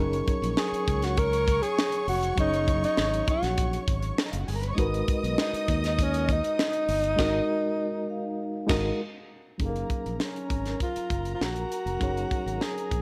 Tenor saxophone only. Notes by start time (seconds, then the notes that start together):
0.58 G#4
1.04 F#4
1.18 A#4
1.62 G#4
2.08 F#4
2.40 D#4
2.84 D#4
3.30 F#4
5.40 D#4
5.86 D#4
6.03 C#4
6.33 D#4
9.63 A#3
10.22 C#4
10.82 F4
11.34 F4
11.42 F#4
12.63 G#4